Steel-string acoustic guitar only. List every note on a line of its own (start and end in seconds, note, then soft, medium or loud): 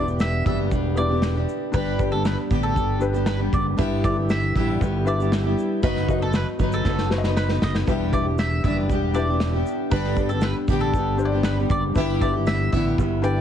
0.05 0.45 B3 soft
0.05 0.45 D4 soft
0.05 0.45 G4 medium
0.45 0.71 E3 medium
0.45 0.69 G3 medium
0.45 0.70 B3 medium
0.45 0.71 D4 medium
0.45 0.71 G4 medium
0.70 1.09 G3 medium
0.70 1.10 B3 medium
0.70 1.10 D4 medium
0.70 1.08 G4 medium
1.09 1.36 B3 soft
1.09 1.35 D4 medium
1.09 1.33 G4 medium
1.34 1.73 B3 medium
1.34 1.74 D4 medium
1.34 1.73 G4 medium
1.73 2.12 G2 loud
1.73 2.12 D3 loud
1.73 2.12 G3 loud
1.73 2.12 B3 medium
1.73 2.12 D4 medium
1.73 2.10 G4 loud
2.12 2.50 G3 soft
2.12 2.50 B3 soft
2.12 2.51 D4 soft
2.12 2.50 G4 medium
2.50 2.76 G2 medium
2.50 2.76 D3 medium
2.50 2.74 G3 loud
2.50 2.75 B3 medium
2.50 2.75 D4 medium
2.50 2.76 G4 medium
2.75 3.14 G3 medium
2.75 3.13 B3 medium
2.75 3.13 D4 medium
2.75 3.12 G4 medium
3.13 3.40 G3 medium
3.13 3.40 B3 medium
3.13 3.38 D4 medium
3.13 3.37 G4 medium
3.39 3.78 G3 medium
3.39 3.78 B3 medium
3.39 3.78 D4 medium
3.39 3.78 G4 medium
3.77 4.16 G2 loud
3.77 4.16 D3 loud
3.77 4.17 G3 medium
3.77 4.17 B3 loud
3.77 4.16 E4 loud
3.77 4.15 G4 loud
4.16 4.55 G3 soft
4.16 4.55 B3 soft
4.16 4.55 E4 medium
4.16 4.55 G4 medium
4.55 4.80 G2 medium
4.55 4.81 D3 medium
4.55 4.79 G3 medium
4.55 4.80 B3 medium
4.55 4.81 E4 medium
4.55 4.81 G4 loud
4.80 5.19 G3 medium
4.80 5.19 B3 medium
4.80 5.19 E4 medium
4.80 5.18 G4 medium
5.19 5.46 G3 medium
5.19 5.45 B3 medium
5.19 5.44 E4 medium
5.19 5.43 G4 medium
5.44 5.83 G3 medium
5.44 5.82 B3 medium
5.44 5.83 E4 medium
5.44 5.82 G4 medium
5.83 6.21 F#3 medium
5.83 6.21 B3 loud
5.83 6.21 D#4 loud
5.83 6.20 B4 loud
6.21 6.59 B3 soft
6.21 6.59 D#4 medium
6.21 6.59 B4 medium
6.59 6.83 F#3 medium
6.59 6.85 B3 medium
6.59 6.85 D#4 medium
6.59 6.86 B4 medium
6.84 7.23 F#3 medium
6.84 7.24 B3 medium
6.84 7.24 D#4 medium
6.84 7.23 B4 medium
7.24 7.50 B3 medium
7.24 7.49 D#4 medium
7.24 7.48 B4 medium
7.49 7.87 B3 medium
7.49 7.88 D#4 medium
7.49 7.87 B4 medium
7.87 8.25 E3 medium
7.87 8.26 G3 medium
7.87 8.26 B3 loud
7.87 8.25 D4 loud
7.87 8.24 G4 loud
8.25 8.63 B3 soft
8.25 8.64 D4 soft
8.25 8.64 G4 medium
8.63 8.89 E3 medium
8.63 8.88 G3 medium
8.63 8.89 B3 medium
8.63 8.90 D4 loud
8.63 8.90 G4 loud
8.89 9.28 G3 medium
8.89 9.28 B3 medium
8.89 9.28 D4 medium
8.89 9.26 G4 medium
9.27 9.55 B3 soft
9.27 9.54 D4 medium
9.27 9.52 G4 medium
9.53 9.92 B3 medium
9.53 9.92 D4 medium
9.53 9.92 G4 medium
9.91 10.30 G2 medium
9.91 10.30 D3 loud
9.91 10.30 G3 loud
9.91 10.31 B3 loud
9.91 10.30 D4 loud
9.91 10.29 G4 loud
10.30 10.68 G3 soft
10.30 10.68 B3 soft
10.30 10.69 D4 medium
10.30 10.68 G4 medium
10.68 10.94 G2 medium
10.68 10.94 D3 medium
10.68 10.92 G3 loud
10.68 10.94 B3 loud
10.68 10.94 D4 loud
10.68 10.95 G4 loud
10.94 11.32 G3 medium
10.94 11.33 B3 medium
10.94 11.32 D4 medium
10.94 11.31 G4 medium
11.32 11.59 G3 medium
11.32 11.59 B3 medium
11.32 11.58 D4 medium
11.32 11.57 G4 medium
11.58 11.96 G3 medium
11.58 11.96 B3 medium
11.58 11.97 D4 medium
11.58 11.96 G4 medium
11.96 12.34 G2 medium
11.96 12.35 D3 medium
11.96 12.35 G3 loud
11.96 12.34 B3 loud
11.96 12.33 E4 loud
11.96 12.32 G4 loud
12.33 12.72 G3 soft
12.33 12.72 B3 soft
12.33 12.73 E4 medium
12.33 12.72 G4 medium
12.72 12.98 G2 medium
12.72 12.98 D3 medium
12.72 12.97 G3 medium
12.72 12.99 B3 loud
12.72 12.99 E4 medium
12.72 12.99 G4 medium
12.98 13.37 G3 medium
12.98 13.37 B3 medium
12.98 13.37 E4 medium
12.98 13.35 G4 medium
13.37 13.41 G4 medium